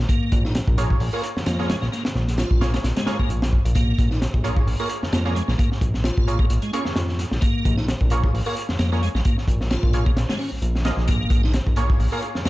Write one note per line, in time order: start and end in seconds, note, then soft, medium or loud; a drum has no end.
0.09 0.43 A#3 loud
0.09 kick loud
0.09 closed hi-hat medium
0.32 0.62 A#1 loud
0.32 kick loud
0.32 closed hi-hat medium
0.45 0.54 D#4 medium
0.45 snare soft
0.55 snare loud
0.55 closed hi-hat medium
0.68 0.96 A#1 medium
0.68 kick medium
0.78 1.10 A#3 loud
0.78 1.10 F4 medium
0.78 1.10 G#4 medium
0.78 1.10 C#5 loud
0.78 closed hi-hat medium
0.90 kick medium
1.00 1.10 A#1 medium
1.00 open hi-hat medium
1.13 1.24 A#3 medium
1.13 1.23 F4 medium
1.13 1.23 G#4 medium
1.13 1.22 A#4 loud
1.13 1.23 C#5 medium
1.23 closed hi-hat medium
1.36 1.44 F2 soft
1.36 snare medium
1.46 1.76 F2 medium
1.46 1.57 A#3 medium
1.46 snare loud
1.46 closed hi-hat medium
1.59 1.69 A#3 medium
1.59 1.65 A#3 medium
1.59 1.65 F4 medium
1.59 1.65 G#4 medium
1.59 1.65 C#5 medium
1.59 snare soft
1.69 1.76 G#3 medium
1.69 snare loud
1.69 closed hi-hat medium
1.81 1.89 A#1 medium
1.81 1.87 A#3 loud
1.81 snare soft
1.92 2.03 A#3 medium
1.92 snare soft
1.92 closed hi-hat medium
2.05 snare loud
2.05 closed hi-hat medium
2.15 2.45 A#1 loud
2.15 snare soft
2.28 snare soft
2.28 closed hi-hat medium
2.38 2.72 F4 medium
2.38 snare loud
2.38 closed hi-hat medium
2.51 2.79 A#1 medium
2.51 kick loud
2.61 3.04 A#3 medium
2.61 3.04 F4 medium
2.61 3.04 G#4 medium
2.61 3.04 C#5 medium
2.61 snare loud
2.61 closed hi-hat medium
2.74 2.79 A#3 medium
2.74 snare loud
2.74 closed hi-hat medium
2.84 2.93 A#1 medium
2.84 snare medium
2.84 closed hi-hat medium
2.97 3.06 G#3 medium
2.97 snare loud
2.97 closed hi-hat medium
3.06 3.18 G#3 loud
3.06 3.15 A#3 loud
3.06 3.15 F4 medium
3.06 3.15 G#4 medium
3.06 3.15 C#5 loud
3.06 snare loud
3.06 closed hi-hat medium
3.19 3.27 A#1 soft
3.19 3.29 A#3 loud
3.19 kick medium
3.30 3.59 A#1 medium
3.30 closed hi-hat medium
3.42 snare loud
3.42 closed hi-hat medium
3.53 kick medium
3.65 3.93 A#1 medium
3.65 closed hi-hat medium
3.75 4.10 A#3 loud
3.75 kick loud
3.75 closed hi-hat medium
3.99 4.28 A#1 medium
3.99 kick loud
3.99 closed hi-hat medium
4.11 4.20 D#4 medium
4.11 snare soft
4.22 snare loud
4.22 closed hi-hat medium
4.34 4.62 A#1 medium
4.34 kick medium
4.44 4.77 A#3 loud
4.44 4.77 F4 medium
4.44 4.77 G#4 medium
4.44 4.77 C#5 loud
4.44 closed hi-hat medium
4.57 kick medium
4.67 4.76 A#1 loud
4.67 open hi-hat medium
4.80 4.90 A#3 medium
4.80 4.90 F4 medium
4.80 4.90 G#4 medium
4.80 4.89 A#4 loud
4.80 4.90 C#5 medium
4.89 closed hi-hat medium
5.03 5.11 F2 soft
5.03 snare medium
5.13 5.42 F2 medium
5.13 5.24 A#3 medium
5.13 snare loud
5.13 closed hi-hat medium
5.25 5.32 A#3 medium
5.25 5.35 A#3 medium
5.25 5.32 F4 medium
5.25 5.32 G#4 medium
5.25 5.32 C#5 loud
5.25 snare soft
5.36 5.42 G#3 medium
5.36 closed hi-hat medium
5.48 5.55 A#1 medium
5.48 5.54 A#3 loud
5.48 snare soft
5.58 5.70 A#3 medium
5.58 kick medium
5.58 closed hi-hat medium
5.72 snare soft
5.81 6.11 A#1 loud
5.81 kick loud
5.81 closed hi-hat medium
5.94 snare medium
6.04 6.39 F4 medium
6.04 snare loud
6.04 closed hi-hat medium
6.17 6.45 A#1 medium
6.17 kick loud
6.27 6.71 A#3 medium
6.27 6.71 F4 medium
6.27 6.71 G#4 medium
6.27 6.71 C#5 medium
6.27 closed hi-hat medium
6.39 6.45 A#3 medium
6.39 kick loud
6.50 6.59 A#1 loud
6.50 closed hi-hat medium
6.62 6.72 G#3 medium
6.62 closed hi-hat soft
6.73 6.81 A#3 loud
6.73 6.84 C#4 medium
6.73 6.81 F4 medium
6.73 6.81 G#4 medium
6.73 6.81 C#5 loud
6.73 closed hi-hat medium
6.85 6.94 F2 soft
6.85 snare medium
6.96 7.25 F2 medium
6.96 snare loud
6.96 closed hi-hat medium
7.09 snare medium
7.19 snare soft
7.19 closed hi-hat medium
7.31 7.39 A#1 medium
7.31 snare medium
7.41 7.76 A#3 loud
7.41 kick loud
7.41 closed hi-hat medium
7.65 7.95 A#1 loud
7.65 kick loud
7.65 closed hi-hat medium
7.77 7.87 D#4 medium
7.77 snare soft
7.88 snare loud
7.88 closed hi-hat medium
8.01 8.29 A#1 medium
8.01 kick medium
8.10 8.43 A#3 loud
8.10 8.43 F4 medium
8.10 8.43 G#4 medium
8.10 8.43 C#5 loud
8.10 closed hi-hat medium
8.24 kick medium
8.33 8.42 A#1 medium
8.33 open hi-hat medium
8.46 8.56 A#3 medium
8.46 8.56 F4 medium
8.46 8.56 G#4 medium
8.46 8.55 A#4 loud
8.46 8.56 C#5 medium
8.57 closed hi-hat medium
8.69 8.77 F2 soft
8.69 snare medium
8.79 9.09 F2 medium
8.79 8.90 A#3 medium
8.79 snare loud
8.79 closed hi-hat medium
8.92 8.98 A#3 medium
8.92 9.02 A#3 medium
8.92 8.98 F4 medium
8.92 8.98 G#4 medium
8.92 8.98 C#5 loud
8.92 snare soft
9.02 9.09 G#3 medium
9.02 closed hi-hat medium
9.15 9.22 A#1 medium
9.15 9.20 A#3 medium
9.15 snare soft
9.25 9.36 A#3 medium
9.25 kick medium
9.25 closed hi-hat medium
9.38 snare soft
9.48 9.77 A#1 loud
9.48 kick medium
9.48 closed hi-hat medium
9.61 snare medium
9.71 10.05 F4 medium
9.71 snare loud
9.71 closed hi-hat medium
9.83 10.11 A#1 medium
9.83 kick medium
9.93 10.37 A#3 medium
9.93 10.37 F4 medium
9.93 10.37 G#4 medium
9.93 10.37 C#5 medium
9.93 closed hi-hat medium
10.06 10.12 A#3 medium
10.06 kick loud
10.17 10.26 A#1 medium
10.17 snare loud
10.17 closed hi-hat medium
10.29 10.38 G#3 medium
10.29 snare loud
10.29 closed hi-hat medium
10.39 10.51 C#4 medium
10.39 open hi-hat medium
10.52 10.60 A#1 soft
10.62 10.92 A#1 medium
10.62 closed hi-hat medium
10.75 snare medium
10.85 10.98 A#3 loud
10.85 10.98 F4 medium
10.85 10.98 G#4 medium
10.85 10.98 D#5 loud
10.85 snare loud
10.85 closed hi-hat medium
10.97 11.26 A#1 medium
10.97 snare soft
11.08 11.42 A#3 loud
11.08 kick loud
11.08 closed hi-hat medium
11.30 11.60 A#1 loud
11.30 kick loud
11.30 closed hi-hat medium
11.43 11.53 D#4 medium
11.43 snare medium
11.53 snare loud
11.53 closed hi-hat medium
11.66 11.95 A#1 medium
11.66 kick medium
11.76 12.09 A#3 loud
11.76 12.09 F4 medium
11.76 12.09 G#4 medium
11.76 12.09 C#5 loud
11.76 closed hi-hat medium
11.90 kick loud
12.00 12.09 A#1 medium
12.00 open hi-hat medium
12.12 12.22 A#3 medium
12.12 12.23 F4 medium
12.12 12.23 G#4 medium
12.12 12.21 A#4 loud
12.12 12.23 C#5 medium
12.22 closed hi-hat medium
12.35 12.44 F2 soft
12.35 snare medium
12.45 12.49 F2 medium
12.45 12.49 A#3 medium
12.45 snare loud
12.45 closed hi-hat medium